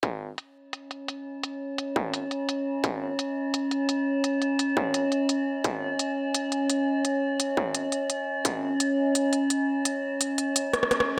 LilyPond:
<<
  \new Staff \with { instrumentName = "Synth drone" } { \time 4/4 \key cis \minor \tempo 4 = 171 cis'1~ | cis'1~ | cis'1~ | cis'1~ |
cis'1~ | cis'1~ | cis'1~ | cis'1 | }
  \new DrumStaff \with { instrumentName = "Drums" } \drummode { \time 4/4 <hh bd>4 hh4 hh8 hh8 hh4 | hh4 hh8 bd8 hh8 hh8 hh4 | <hh bd>4 hh4 hh8 hh8 hh4 | hh8 hh8 hh8 bd8 hh8 hh8 hh4 |
<hh bd>4 hh4 hh8 hh8 hh4 | hh4 hh8 bd8 hh8 hh8 hh4 | <hh bd>4 hh4 hh8 hh8 hh4 | hh4 hh8 hh8 hh8 <hh ss>16 ss16 <hh ss>16 ss8. | }
>>